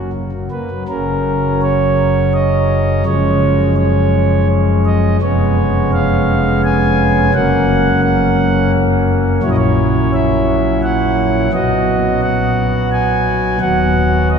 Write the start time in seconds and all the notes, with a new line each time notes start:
Already playing: F#1 F#2 F#3 C#4
0.13 C#3
0.32 F#3
0.51 A#3 B4
0.71 F#3
0.88 F#1 F#2 C#3 F#3 C#4 A#4
1.63 C#5
2.34 D#5
3.06 F#1 F#2 F3 G#3 C#4 C#5
3.77 C#5
4.86 D#5
5.22 F1 F2 G#3 B3 C#4 C#5
5.93 F5
6.64 G#5
7.34 F#1 F#2 F#3 A#3 C#4 F#5
8.03 F#5
9.43 A#1 A#2 F#3 C#4 E4 C#5
9.50 D#5
9.57 C#5
10.14 E5
10.83 F#5
11.53 B1 B2 F#3 B3 F#4 D#5
12.22 F#5
12.92 G#5
13.61 D#1 D#2 F#3 B3 F#4 F#5
14.30 D#5